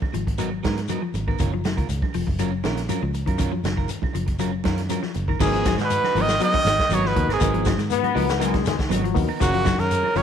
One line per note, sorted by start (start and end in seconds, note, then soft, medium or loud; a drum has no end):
0.02 kick medium
0.02 high conga medium
0.02 claves medium
0.13 0.60 G#1 medium
0.13 0.35 F3 medium
0.13 muted clean electric guitar stroke soft
0.13 closed hi-hat medium
0.13 shekere soft
0.27 muted clean electric guitar stroke soft
0.27 kick medium
0.27 closed hi-hat soft
0.38 0.51 F#3 medium
0.38 0.60 F#3 medium
0.38 0.50 B3 medium
0.38 0.50 D#4 medium
0.38 0.50 A#4 medium
0.38 closed hi-hat medium
0.38 claves medium
0.38 shekere medium
0.51 muted clean electric guitar stroke medium
0.63 0.88 G#2 medium
0.63 0.79 F#3 medium
0.63 0.79 B3 medium
0.63 0.80 A#4 medium
0.63 kick medium
0.63 snare medium
0.63 closed hi-hat medium
0.63 high conga medium
0.63 shekere soft
0.77 snare soft
0.77 closed hi-hat soft
0.88 1.02 F#3 medium
0.88 1.00 F#3 medium
0.88 1.02 B3 medium
0.88 1.01 D#4 medium
0.88 1.01 A#4 medium
0.88 closed hi-hat medium
0.88 high conga medium
0.88 claves medium
0.88 shekere medium
1.02 1.23 F3 medium
1.02 muted clean electric guitar stroke soft
1.14 1.37 G#1 medium
1.14 muted clean electric guitar stroke soft
1.14 closed hi-hat soft
1.14 high conga medium
1.14 shekere soft
1.27 1.38 D#3 medium
1.27 1.39 B3 soft
1.27 1.39 A#4 medium
1.27 muted clean electric guitar stroke medium
1.27 kick medium
1.27 claves medium
1.39 1.75 F#1 medium
1.39 1.51 D#3 medium
1.39 1.52 C#4 medium
1.39 1.52 F4 medium
1.39 1.51 A#4 medium
1.39 kick medium
1.39 closed hi-hat medium
1.39 low conga medium
1.39 shekere medium
1.53 1.63 F3 medium
1.53 muted clean electric guitar stroke soft
1.53 high conga medium
1.64 1.75 F#3 medium
1.64 muted clean electric guitar stroke soft
1.64 snare medium
1.64 closed hi-hat soft
1.64 high conga medium
1.64 low conga medium
1.64 claves medium
1.64 shekere soft
1.77 1.88 C#2 medium
1.77 1.98 D#3 medium
1.77 1.88 F4 soft
1.77 1.88 A#4 medium
1.77 kick medium
1.77 closed hi-hat soft
1.89 2.01 C#2 medium
1.89 muted clean electric guitar stroke soft
1.89 closed hi-hat medium
1.89 shekere medium
2.02 muted fingered electric bass stroke soft
2.02 kick medium
2.02 high conga medium
2.02 claves medium
2.14 2.27 F1 medium
2.14 2.35 F3 medium
2.14 muted clean electric guitar stroke soft
2.14 open hi-hat medium
2.14 shekere soft
2.27 2.62 F#1 medium
2.27 muted clean electric guitar stroke soft
2.27 kick medium
2.39 2.60 F#3 medium
2.39 2.53 C#4 medium
2.39 2.52 F4 medium
2.39 2.51 A#4 medium
2.39 closed hi-hat medium
2.39 claves medium
2.39 shekere medium
2.52 muted clean electric guitar stroke medium
2.64 2.88 A#1 medium
2.64 2.85 D#3 medium
2.64 2.80 C#4 medium
2.64 2.80 F4 medium
2.64 2.81 A#4 medium
2.64 snare medium
2.64 closed hi-hat soft
2.64 high conga medium
2.64 shekere soft
2.77 snare soft
2.77 closed hi-hat soft
2.89 3.00 F#3 medium
2.89 3.02 C#4 medium
2.89 3.02 F4 medium
2.89 3.02 A#4 medium
2.89 closed hi-hat medium
2.89 high conga medium
2.89 claves medium
2.89 shekere medium
3.02 3.26 C#2 medium
3.02 3.23 F3 medium
3.02 muted clean electric guitar stroke medium
3.14 muted clean electric guitar stroke soft
3.14 closed hi-hat soft
3.14 shekere soft
3.26 3.63 F#2 medium
3.26 3.37 D#3 medium
3.26 3.39 F4 medium
3.26 3.39 A#4 medium
3.26 kick medium
3.26 closed hi-hat soft
3.26 claves medium
3.38 3.50 D#3 medium
3.38 3.53 C#4 medium
3.38 3.52 F4 medium
3.38 3.52 A#4 medium
3.38 kick medium
3.38 closed hi-hat medium
3.38 low conga medium
3.38 shekere medium
3.52 3.62 F3 medium
3.52 muted clean electric guitar stroke soft
3.52 high conga medium
3.64 3.88 F#1 medium
3.64 3.76 F#3 medium
3.64 muted clean electric guitar stroke soft
3.64 snare medium
3.64 closed hi-hat medium
3.64 high conga medium
3.64 low conga medium
3.64 claves medium
3.64 shekere soft
3.77 3.98 D#3 medium
3.77 3.90 F4 soft
3.77 3.90 A#4 medium
3.77 kick medium
3.88 muted clean electric guitar stroke soft
3.88 closed hi-hat medium
3.88 shekere medium
4.02 kick medium
4.02 high conga medium
4.02 low conga medium
4.02 claves medium
4.13 4.62 F#1 medium
4.13 4.36 F3 medium
4.13 muted clean electric guitar stroke soft
4.13 closed hi-hat medium
4.13 shekere soft
4.27 muted clean electric guitar stroke soft
4.27 kick medium
4.27 closed hi-hat soft
4.39 4.61 F#3 medium
4.39 4.53 C#4 medium
4.39 4.52 F4 medium
4.39 4.51 A#4 medium
4.39 closed hi-hat medium
4.39 high conga medium
4.39 claves medium
4.39 shekere medium
4.52 muted clean electric guitar stroke soft
4.64 4.89 F#2 medium
4.64 4.86 D#3 medium
4.64 4.80 C#4 medium
4.64 4.81 F4 medium
4.64 4.81 A#4 medium
4.64 kick medium
4.64 snare medium
4.64 closed hi-hat medium
4.64 high conga medium
4.64 shekere soft
4.78 snare soft
4.78 closed hi-hat soft
4.89 5.01 F#3 medium
4.89 5.03 C#4 medium
4.89 5.02 F4 medium
4.89 5.01 A#4 medium
4.89 closed hi-hat medium
4.89 high conga medium
4.89 claves medium
4.89 shekere medium
5.02 5.24 F3 medium
5.02 muted clean electric guitar stroke soft
5.02 snare soft
5.14 5.39 F#1 medium
5.14 muted clean electric guitar stroke soft
5.14 closed hi-hat soft
5.14 shekere soft
5.28 5.39 D#3 medium
5.28 5.39 A#4 medium
5.28 kick medium
5.28 claves medium
5.40 5.76 G#1 loud
5.40 5.52 D#3 medium
5.40 5.53 F#3 medium
5.40 5.53 B3 medium
5.40 5.78 B3 medium
5.40 5.52 D#4 medium
5.40 5.78 D#4 medium
5.40 5.78 F#4 medium
5.40 5.76 G#4 loud
5.40 5.52 A#4 medium
5.40 5.78 A#4 medium
5.40 kick loud
5.40 crash loud
5.40 high conga soft
5.40 low conga medium
5.40 shekere medium
5.44 5.78 G#2 medium
5.53 5.64 F3 medium
5.53 5.64 B3 soft
5.53 5.65 D#4 soft
5.53 5.65 A#4 medium
5.53 closed hi-hat soft
5.65 5.77 F#3 medium
5.65 kick medium
5.65 snare medium
5.65 closed hi-hat medium
5.65 high conga loud
5.65 claves medium
5.65 shekere loud
5.78 6.01 G#2 medium
5.78 6.21 B2 medium
5.78 6.00 D#3 medium
5.78 muted clean electric guitar stroke medium
5.78 snare soft
5.78 closed hi-hat soft
5.78 shekere soft
5.84 6.23 B4 loud
5.90 muted clean electric guitar stroke soft
5.90 closed hi-hat medium
5.90 high conga soft
5.90 shekere medium
6.04 snare soft
6.04 high conga medium
6.04 claves medium
6.14 6.39 G#1 medium
6.14 6.37 F3 medium
6.14 6.28 F#3 medium
6.14 6.28 B3 medium
6.14 6.29 B3 medium
6.14 6.28 D#4 medium
6.14 6.28 F#4 medium
6.14 6.28 A#4 medium
6.14 open hi-hat medium
6.14 shekere soft
6.19 6.42 D#3 medium
6.19 6.43 D#5 loud
6.29 muted clean electric guitar stroke soft
6.29 snare medium
6.29 shekere medium
6.39 6.54 F#3 medium
6.39 6.62 F#3 medium
6.39 6.77 B3 medium
6.39 6.53 B3 medium
6.39 6.77 D#4 medium
6.39 6.53 D#4 medium
6.39 6.77 F#4 medium
6.39 6.77 A#4 medium
6.39 6.53 A#4 medium
6.39 closed hi-hat medium
6.39 high conga soft
6.39 claves medium
6.39 shekere medium
6.43 6.96 D#3 loud
6.43 6.96 D#5 loud
6.54 muted clean electric guitar stroke soft
6.54 kick medium
6.54 closed hi-hat soft
6.54 high conga loud
6.65 6.77 G#1 loud
6.65 6.87 D#3 medium
6.65 muted clean electric guitar stroke soft
6.65 snare medium
6.65 closed hi-hat medium
6.65 shekere medium
6.79 kick medium
6.79 snare medium
6.79 shekere soft
6.89 7.13 G#1 medium
6.89 7.04 F#3 medium
6.89 7.02 F#3 medium
6.89 7.03 B3 medium
6.89 7.03 D#4 medium
6.89 7.03 A#4 medium
6.89 closed hi-hat medium
6.89 high conga medium
6.89 claves medium
6.89 shekere medium
6.95 7.09 F#3 medium
6.95 7.09 C#5 loud
7.04 7.30 B2 medium
7.04 7.25 F3 medium
7.04 7.30 B4 medium
7.04 muted clean electric guitar stroke soft
7.04 snare soft
7.15 7.26 D#2 medium
7.15 7.28 B3 medium
7.15 7.28 D#4 medium
7.15 7.28 F#4 medium
7.15 7.28 A#4 loud
7.15 muted clean electric guitar stroke soft
7.15 kick medium
7.15 closed hi-hat medium
7.15 low conga medium
7.15 shekere soft
7.27 7.39 G#1 medium
7.27 7.39 D#3 medium
7.27 7.40 D#4 medium
7.27 7.41 A#4 medium
7.27 snare soft
7.27 closed hi-hat soft
7.27 claves medium
7.31 7.76 G#2 medium
7.31 7.40 B3 soft
7.31 7.78 G#4 medium
7.40 7.76 G#1 loud
7.40 7.52 D#3 medium
7.40 7.54 F#3 medium
7.40 7.77 B3 loud
7.40 7.54 B3 medium
7.40 7.77 D#4 medium
7.40 7.53 D#4 medium
7.40 7.77 F#4 medium
7.40 7.78 A#4 loud
7.40 7.53 A#4 loud
7.40 kick loud
7.40 closed hi-hat medium
7.40 high conga soft
7.40 low conga medium
7.40 shekere medium
7.54 7.64 F3 medium
7.54 7.65 B3 soft
7.54 7.65 D#4 soft
7.54 7.66 A#4 medium
7.54 closed hi-hat soft
7.65 7.77 F#3 medium
7.65 muted clean electric guitar stroke soft
7.65 kick medium
7.65 snare medium
7.65 closed hi-hat medium
7.65 high conga loud
7.65 claves medium
7.65 shekere medium
7.78 8.13 G#2 medium
7.78 8.00 D#3 medium
7.78 muted clean electric guitar stroke soft
7.78 snare soft
7.78 closed hi-hat soft
7.78 shekere soft
7.90 8.37 B3 loud
7.90 muted clean electric guitar stroke soft
7.90 closed hi-hat medium
7.90 high conga soft
7.90 shekere medium
8.03 closed hi-hat soft
8.03 high conga medium
8.03 claves medium
8.14 8.87 C#2 medium
8.14 8.37 F3 medium
8.14 8.28 F#3 medium
8.14 8.28 B3 medium
8.14 8.27 B3 medium
8.14 8.27 D#4 medium
8.14 8.28 D#4 medium
8.14 8.28 F#4 medium
8.14 8.27 A#4 medium
8.14 8.28 B4 loud
8.14 open hi-hat medium
8.14 shekere soft
8.28 muted clean electric guitar stroke medium
8.28 snare medium
8.28 closed hi-hat soft
8.28 shekere medium
8.39 8.53 F#3 loud
8.39 8.62 F#3 medium
8.39 8.64 G#3 loud
8.39 8.53 B3 loud
8.39 8.77 B3 loud
8.39 8.53 D#4 loud
8.39 8.78 D#4 medium
8.39 8.78 F#4 medium
8.39 8.52 A#4 loud
8.39 8.78 A#4 loud
8.39 closed hi-hat medium
8.39 high conga soft
8.39 claves medium
8.39 shekere medium
8.53 muted clean electric guitar stroke medium
8.53 kick medium
8.53 snare soft
8.53 closed hi-hat soft
8.53 high conga loud
8.53 low conga medium
8.65 8.87 D#3 medium
8.65 8.77 G#3 medium
8.65 muted clean electric guitar stroke soft
8.65 snare medium
8.65 closed hi-hat medium
8.65 shekere loud
8.79 kick medium
8.79 snare medium
8.79 closed hi-hat soft
8.79 shekere soft
8.89 9.14 G#1 loud
8.89 9.03 F#3 medium
8.89 9.26 F#3 medium
8.89 9.02 F#3 medium
8.89 9.02 B3 medium
8.89 9.02 D#4 medium
8.89 muted clean electric guitar stroke medium
8.89 closed hi-hat medium
8.89 high conga medium
8.89 claves medium
8.89 shekere medium
9.03 9.25 F3 medium
9.03 muted clean electric guitar stroke medium
9.03 closed hi-hat soft
9.14 9.28 D#2 loud
9.14 9.27 B3 loud
9.14 9.28 D#4 medium
9.14 9.28 F#4 loud
9.14 9.28 A#4 loud
9.14 muted clean electric guitar stroke medium
9.14 kick medium
9.14 open hi-hat medium
9.14 high conga medium
9.14 low conga medium
9.14 shekere soft
9.28 9.39 D#3 medium
9.28 9.41 B3 soft
9.28 9.41 D#4 medium
9.28 9.40 A#4 medium
9.28 claves medium
9.40 9.76 F#1 loud
9.40 9.82 A#2 medium
9.40 9.51 D#3 medium
9.40 9.53 F3 medium
9.40 9.77 C#4 medium
9.40 9.54 C#4 medium
9.40 9.54 F4 loud
9.40 9.81 F#4 loud
9.40 9.78 G#4 medium
9.40 9.78 A#4 loud
9.40 9.53 A#4 loud
9.40 9.77 F5 medium
9.40 kick loud
9.40 snare soft
9.40 closed hi-hat medium
9.40 high conga soft
9.40 low conga medium
9.40 shekere medium
9.54 9.64 F3 medium
9.54 9.66 F4 medium
9.54 9.66 A#4 medium
9.54 closed hi-hat soft
9.65 9.76 F#3 medium
9.65 muted clean electric guitar stroke soft
9.65 kick medium
9.65 snare medium
9.65 closed hi-hat medium
9.65 high conga loud
9.65 claves medium
9.65 shekere medium
9.78 10.02 F#2 medium
9.78 10.17 C#3 medium
9.78 9.99 D#3 medium
9.78 10.19 A#4 loud
9.78 muted clean electric guitar stroke soft
9.78 snare soft
9.78 closed hi-hat soft
9.78 shekere soft
9.90 muted clean electric guitar stroke soft
9.90 closed hi-hat medium
9.90 high conga soft
9.90 shekere medium
10.03 high conga medium
10.03 claves medium
10.15 10.22 F#1 loud
10.15 10.22 D#3 loud
10.15 10.22 F3 medium
10.15 10.22 C#4 medium
10.15 10.22 F4 medium
10.15 10.22 G#4 medium
10.15 10.22 A#4 medium
10.15 10.22 C#5 loud
10.15 open hi-hat medium
10.15 shekere soft